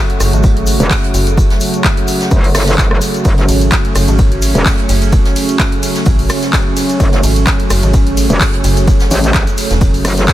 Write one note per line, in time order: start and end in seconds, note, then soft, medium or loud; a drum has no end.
0.00 10.33 C#3 medium
0.00 10.33 F#3 medium
0.00 10.33 A3 medium
0.00 3.24 F#4 medium
0.10 closed hi-hat medium
0.20 0.31 F#1 loud
0.20 cross-stick medium
0.20 open hi-hat loud
0.20 tambourine medium
0.20 shaker loud
0.33 0.78 G#1 loud
0.33 closed hi-hat medium
0.33 shaker soft
0.43 kick loud
0.43 tambourine medium
0.43 shaker medium
0.57 closed hi-hat medium
0.66 open hi-hat loud
0.66 tambourine medium
0.66 shaker medium
0.80 0.89 E1 loud
0.80 snare soft
0.80 closed hi-hat medium
0.80 shaker soft
0.90 kick loud
0.90 snare loud
0.90 clap loud
0.90 open hi-hat medium
0.90 shaker medium
1.04 closed hi-hat soft
1.14 1.59 F#1 medium
1.14 open hi-hat loud
1.14 tambourine medium
1.14 shaker medium
1.27 closed hi-hat medium
1.27 closed hi-hat soft
1.27 shaker soft
1.37 kick loud
1.37 tambourine medium
1.37 shaker medium
1.50 snare medium
1.50 closed hi-hat soft
1.60 open hi-hat loud
1.60 tambourine medium
1.60 shaker medium
1.74 closed hi-hat medium
1.74 shaker soft
1.84 kick loud
1.84 snare loud
1.84 clap loud
1.84 tambourine medium
1.84 shaker medium
1.97 closed hi-hat soft
1.97 closed hi-hat medium
2.08 open hi-hat loud
2.08 tambourine medium
2.08 shaker loud
2.21 snare medium
2.21 closed hi-hat medium
2.21 shaker soft
2.31 2.53 F#1 loud
2.31 kick loud
2.31 tambourine medium
2.31 shaker medium
2.44 open hi-hat medium
2.55 3.00 F#1 loud
2.55 cross-stick medium
2.55 snare loud
2.55 open hi-hat loud
2.55 tambourine medium
2.55 shaker loud
2.61 snare loud
2.61 tambourine medium
2.67 snare medium
2.67 closed hi-hat medium
2.67 tambourine medium
2.67 shaker soft
2.73 snare medium
2.73 tambourine medium
2.78 kick loud
2.78 snare loud
2.78 clap loud
2.78 tambourine medium
2.78 shaker medium
2.91 cross-stick medium
3.01 snare soft
3.01 open hi-hat loud
3.01 tambourine medium
3.01 shaker loud
3.14 closed hi-hat medium
3.14 shaker soft
3.25 3.47 F#1 loud
3.25 10.33 C#4 medium
3.25 kick loud
3.25 ride medium
3.25 tambourine medium
3.25 shaker medium
3.38 snare medium
3.38 closed hi-hat soft
3.48 3.70 G#1 loud
3.48 open hi-hat loud
3.48 ride medium
3.48 tambourine medium
3.48 shaker medium
3.61 closed hi-hat soft
3.61 closed hi-hat medium
3.61 shaker soft
3.71 kick loud
3.71 snare loud
3.71 clap loud
3.71 ride medium
3.71 tambourine medium
3.71 shaker medium
3.85 closed hi-hat medium
3.95 4.06 F#1 loud
3.95 cross-stick medium
3.95 open hi-hat loud
3.95 ride medium
3.95 tambourine medium
3.95 shaker loud
4.08 4.53 G#1 loud
4.08 closed hi-hat medium
4.08 shaker soft
4.18 kick loud
4.18 ride medium
4.18 tambourine medium
4.18 shaker soft
4.32 closed hi-hat medium
4.42 open hi-hat loud
4.42 ride medium
4.42 tambourine medium
4.42 shaker loud
4.55 4.64 E1 medium
4.55 snare soft
4.55 closed hi-hat medium
4.55 shaker soft
4.66 kick loud
4.66 snare loud
4.66 clap loud
4.66 open hi-hat medium
4.66 ride medium
4.66 shaker medium
4.78 closed hi-hat soft
4.89 5.34 F#1 loud
4.89 open hi-hat loud
4.89 ride medium
4.89 tambourine medium
4.89 shaker medium
5.02 closed hi-hat medium
5.02 closed hi-hat soft
5.02 shaker soft
5.12 kick loud
5.12 ride medium
5.12 tambourine medium
5.12 shaker medium
5.25 snare medium
5.25 closed hi-hat soft
5.36 open hi-hat loud
5.36 ride medium
5.36 tambourine medium
5.36 shaker medium
5.49 closed hi-hat medium
5.49 shaker soft
5.59 kick loud
5.59 snare loud
5.59 clap loud
5.59 ride medium
5.59 tambourine medium
5.59 shaker medium
5.72 closed hi-hat soft
5.72 closed hi-hat medium
5.83 open hi-hat loud
5.83 ride medium
5.83 tambourine medium
5.83 shaker loud
5.95 snare medium
5.95 closed hi-hat medium
5.95 shaker soft
6.05 6.28 A1 loud
6.05 kick loud
6.05 ride medium
6.05 tambourine medium
6.05 shaker soft
6.19 open hi-hat medium
6.29 cross-stick medium
6.29 snare medium
6.29 open hi-hat loud
6.29 ride medium
6.29 tambourine medium
6.29 shaker loud
6.42 snare medium
6.42 closed hi-hat medium
6.42 shaker soft
6.53 kick loud
6.53 snare loud
6.53 clap loud
6.53 ride medium
6.53 tambourine medium
6.53 shaker medium
6.76 snare soft
6.76 open hi-hat loud
6.76 ride medium
6.76 tambourine medium
6.76 shaker medium
6.89 closed hi-hat medium
6.89 shaker soft
7.00 7.22 F#1 loud
7.00 kick loud
7.00 ride medium
7.00 tambourine medium
7.00 shaker soft
7.12 snare medium
7.12 closed hi-hat soft
7.23 7.45 G#1 loud
7.23 open hi-hat loud
7.23 ride medium
7.23 tambourine medium
7.23 shaker medium
7.36 closed hi-hat medium
7.36 closed hi-hat soft
7.36 shaker soft
7.47 kick loud
7.47 snare loud
7.47 clap loud
7.47 ride medium
7.47 tambourine medium
7.47 shaker soft
7.60 closed hi-hat medium
7.70 7.81 F#1 loud
7.70 cross-stick medium
7.70 open hi-hat loud
7.70 ride medium
7.70 tambourine medium
7.70 shaker medium
7.83 8.28 G#1 loud
7.83 closed hi-hat medium
7.83 shaker soft
7.93 kick loud
7.93 ride medium
7.93 tambourine medium
7.93 shaker medium
8.07 closed hi-hat medium
8.17 open hi-hat loud
8.17 ride medium
8.17 shaker medium
8.30 8.39 E1 loud
8.30 closed hi-hat medium
8.30 shaker soft
8.40 kick loud
8.40 snare loud
8.40 clap loud
8.40 open hi-hat medium
8.40 ride medium
8.40 shaker medium
8.53 closed hi-hat soft
8.64 9.09 F#1 loud
8.64 open hi-hat loud
8.64 ride medium
8.64 tambourine medium
8.64 shaker medium
8.77 closed hi-hat soft
8.77 closed hi-hat medium
8.77 shaker soft
8.87 kick loud
8.87 ride medium
8.87 tambourine medium
8.87 shaker medium
8.99 snare medium
8.99 closed hi-hat soft
8.99 shaker soft
9.11 9.45 A1 loud
9.11 open hi-hat loud
9.11 ride medium
9.11 tambourine medium
9.11 shaker loud
9.24 closed hi-hat medium
9.24 shaker soft
9.34 kick loud
9.34 snare loud
9.34 clap loud
9.34 ride medium
9.34 tambourine medium
9.34 shaker medium
9.47 closed hi-hat medium
9.47 closed hi-hat soft
9.47 shaker soft
9.58 open hi-hat loud
9.58 ride medium
9.58 tambourine medium
9.58 shaker medium
9.71 10.03 E1 loud
9.71 snare medium
9.71 closed hi-hat medium
9.71 shaker soft
9.81 kick loud
9.81 ride medium
9.81 tambourine medium
9.81 shaker soft
9.94 open hi-hat medium
9.94 shaker soft
10.05 10.33 F#1 loud
10.05 cross-stick medium
10.05 snare medium
10.05 open hi-hat loud
10.05 ride medium
10.05 tambourine medium
10.05 shaker medium
10.17 snare medium
10.17 closed hi-hat medium
10.17 shaker soft
10.27 kick loud
10.27 snare loud
10.27 snare medium
10.27 clap loud
10.27 ride medium
10.27 tambourine medium
10.27 shaker medium